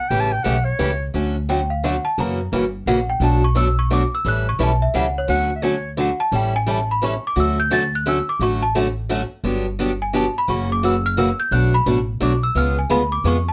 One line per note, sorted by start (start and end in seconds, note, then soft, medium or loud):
0.00 0.10 F#5 medium
0.09 0.38 A1 medium
0.09 0.31 C#3 medium
0.09 0.31 E3 medium
0.09 0.31 A3 medium
0.09 0.31 C#4 medium
0.09 0.31 G4 medium
0.09 0.22 G5 loud
0.20 0.33 A5 medium
0.32 0.45 G5 medium
0.44 0.74 B1 medium
0.44 0.55 C#3 loud
0.44 0.55 E3 medium
0.44 0.56 A3 loud
0.44 0.56 C#4 medium
0.44 0.56 G4 loud
0.44 0.66 F#5 medium
0.65 1.06 C#5 medium
0.79 1.09 C#2 medium
0.79 0.90 C#3 medium
0.79 0.90 E3 medium
0.79 0.90 A3 medium
0.79 0.90 C#4 loud
0.79 0.90 G4 medium
1.14 1.97 D2 medium
1.14 1.34 D3 medium
1.14 1.34 F#3 medium
1.14 1.35 A3 medium
1.14 1.35 C#4 medium
1.14 1.35 F#4 medium
1.49 1.60 D3 medium
1.49 1.59 F#3 medium
1.49 1.60 A3 medium
1.49 1.60 C#4 medium
1.49 1.60 F#4 medium
1.49 1.69 G5 medium
1.70 1.83 F5 medium
1.84 1.94 D3 medium
1.84 1.94 F#3 medium
1.84 1.94 A3 medium
1.84 1.94 C#4 medium
1.84 1.95 F#4 loud
1.84 2.04 F#5 medium
2.05 2.17 A5 medium
2.18 2.45 F#2 medium
2.18 2.38 C#3 medium
2.18 2.38 E3 medium
2.18 2.39 A#3 medium
2.18 2.39 C#4 medium
2.18 2.39 F#4 medium
2.18 2.51 A#5 medium
2.52 2.81 G1 medium
2.52 2.63 C#3 medium
2.52 2.63 E3 medium
2.52 2.63 A#3 medium
2.52 2.63 C#4 medium
2.52 2.64 F#4 medium
2.86 3.16 A#1 medium
2.86 2.98 C#3 medium
2.86 2.98 E3 medium
2.86 2.98 A#3 loud
2.86 2.98 C#4 medium
2.86 2.98 F#4 medium
2.86 3.07 F#5 medium
3.10 3.22 G5 medium
3.20 4.04 B1 medium
3.20 3.42 B2 medium
3.20 3.42 F#3 medium
3.20 3.42 A3 medium
3.20 3.42 D4 medium
3.20 3.42 F#4 medium
3.20 3.43 A5 medium
3.44 3.57 C#6 medium
3.55 3.66 B2 medium
3.55 3.67 F#3 loud
3.55 3.67 A3 medium
3.55 3.67 D4 loud
3.55 3.67 F#4 medium
3.55 3.77 E6 medium
3.79 3.91 C#6 medium
3.90 4.01 B2 medium
3.90 4.02 F#3 loud
3.90 4.02 A3 medium
3.90 4.02 D4 medium
3.90 4.02 F#4 loud
3.90 4.12 D6 medium
4.15 4.26 E6 medium
4.25 4.53 A1 medium
4.25 4.46 E3 medium
4.25 4.46 G3 medium
4.25 4.46 C#4 medium
4.25 4.46 E4 medium
4.25 4.46 A4 medium
4.25 4.47 F#6 loud
4.49 4.61 C#6 medium
4.59 4.89 B1 medium
4.59 4.70 E3 medium
4.59 4.70 G3 medium
4.59 4.71 C#4 medium
4.59 4.71 E4 loud
4.59 4.71 A4 medium
4.63 4.82 A5 medium
4.82 4.95 E5 medium
4.94 5.24 C#2 medium
4.94 5.05 E3 medium
4.94 5.05 G3 medium
4.94 5.05 C#4 medium
4.94 5.06 E4 medium
4.94 5.06 A4 loud
4.94 5.15 F#5 medium
5.18 5.26 C#5 medium
5.28 6.11 D2 medium
5.28 5.49 D3 medium
5.28 5.49 F#3 medium
5.28 5.49 A3 medium
5.28 5.49 C#4 medium
5.28 5.50 F#4 medium
5.28 5.55 F#5 loud
5.56 5.64 E5 medium
5.62 5.74 D3 medium
5.62 5.74 F#3 loud
5.62 5.74 A3 medium
5.62 5.74 C#4 loud
5.62 5.74 F#4 loud
5.62 5.91 C#5 medium
5.97 6.09 D3 medium
5.97 6.09 F#3 medium
5.97 6.09 A3 medium
5.97 6.09 C#4 medium
5.97 6.09 F#4 medium
5.97 6.20 F#5 medium
6.20 6.33 A5 loud
6.32 7.15 A1 medium
6.32 6.53 E3 medium
6.32 6.53 G3 medium
6.32 6.53 C#4 medium
6.32 6.53 E4 medium
6.32 6.53 A4 medium
6.32 6.54 G5 medium
6.56 6.68 G#5 loud
6.66 6.78 E3 medium
6.66 6.78 G3 medium
6.66 6.78 C#4 medium
6.66 6.78 E4 loud
6.66 6.78 A4 loud
6.70 6.89 A5 medium
6.91 7.03 B5 medium
7.02 7.13 E3 medium
7.02 7.13 G3 medium
7.02 7.13 C#4 loud
7.02 7.13 E4 loud
7.02 7.13 A4 loud
7.02 7.24 C#6 medium
7.27 7.38 D6 medium
7.36 8.19 D2 medium
7.36 7.57 D3 medium
7.36 7.57 F#3 medium
7.36 7.57 A3 medium
7.36 7.57 C#4 medium
7.36 7.57 F#4 medium
7.40 7.59 E6 medium
7.60 7.72 G6 loud
7.71 7.82 D3 loud
7.71 7.82 F#3 loud
7.71 7.82 A3 loud
7.71 7.82 C#4 loud
7.71 7.82 F#4 loud
7.71 7.92 A6 loud
7.95 8.07 F#6 medium
8.06 8.17 D3 medium
8.06 8.17 F#3 medium
8.06 8.17 A3 medium
8.06 8.17 C#4 loud
8.06 8.17 F#4 loud
8.06 8.28 E6 medium
8.29 8.41 D6 medium
8.39 9.23 A1 medium
8.39 8.61 D3 medium
8.39 8.62 F#3 medium
8.39 8.62 A3 medium
8.39 8.62 C#4 medium
8.39 8.62 F#4 medium
8.39 8.62 C#6 medium
8.62 8.70 A5 medium
8.75 8.86 D3 loud
8.75 8.86 F#3 medium
8.75 8.86 A3 loud
8.75 8.86 C#4 loud
8.75 8.87 F#4 loud
9.09 9.21 D3 loud
9.09 9.21 F#3 medium
9.09 9.21 A3 loud
9.09 9.21 C#4 loud
9.09 9.21 F#4 loud
9.44 10.27 G1 medium
9.44 9.65 D3 medium
9.44 9.65 F#3 medium
9.44 9.65 B3 medium
9.44 9.65 D4 medium
9.44 9.65 G4 medium
9.79 9.90 D3 medium
9.79 9.90 F#3 medium
9.79 9.90 B3 medium
9.79 9.90 D4 medium
9.79 9.90 G4 loud
10.02 10.14 G#5 medium
10.13 10.24 D3 medium
10.13 10.25 F#3 medium
10.13 10.25 B3 loud
10.13 10.25 D4 loud
10.13 10.25 G4 loud
10.13 10.35 A5 medium
10.38 10.50 B5 medium
10.48 11.31 F#1 medium
10.48 10.69 C#3 medium
10.48 10.69 E3 medium
10.48 10.69 A#3 medium
10.48 10.69 C#4 medium
10.48 10.69 F#4 medium
10.48 10.69 C#6 medium
10.72 10.84 D6 medium
10.83 10.94 C#3 medium
10.83 10.94 E3 medium
10.83 10.94 A#3 medium
10.83 10.94 C#4 medium
10.83 10.94 F#4 medium
10.83 11.04 E6 medium
11.06 11.18 F6 loud
11.17 11.28 C#3 medium
11.17 11.28 E3 medium
11.17 11.29 A#3 loud
11.17 11.29 C#4 loud
11.17 11.29 F#4 loud
11.17 11.38 E6 medium
11.40 11.52 G6 loud
11.51 11.79 B1 medium
11.51 11.73 B2 medium
11.51 11.73 F#3 medium
11.51 11.73 A3 medium
11.51 11.73 D4 medium
11.51 11.73 F#4 medium
11.51 11.73 F#6 medium
11.74 11.82 B5 loud
11.86 12.16 A1 medium
11.86 11.97 B2 medium
11.86 11.97 F#3 loud
11.86 11.98 A3 medium
11.86 11.98 D4 medium
11.86 11.98 F#4 loud
12.20 12.50 B1 medium
12.20 12.32 B2 medium
12.20 12.32 F#3 loud
12.20 12.32 A3 loud
12.20 12.32 D4 loud
12.20 12.32 F#4 medium
12.20 12.42 D6 medium
12.43 12.56 E6 loud
12.55 12.83 C#2 medium
12.55 12.76 C#3 medium
12.55 12.76 G#3 medium
12.55 12.76 B3 medium
12.55 12.76 F4 medium
12.55 12.77 G#4 medium
12.55 12.77 F6 medium
12.79 12.91 G#5 medium
12.90 13.20 D2 medium
12.90 13.01 C#3 medium
12.90 13.01 G#3 loud
12.90 13.01 B3 medium
12.90 13.01 F4 loud
12.90 13.02 G#4 medium
12.90 13.11 B5 medium
13.12 13.25 D6 medium
13.24 13.53 F2 medium
13.24 13.36 C#3 medium
13.24 13.36 G#3 medium
13.24 13.36 B3 medium
13.24 13.36 F4 loud
13.24 13.36 G#4 loud
13.24 13.47 C#6 medium
13.49 13.53 A5 medium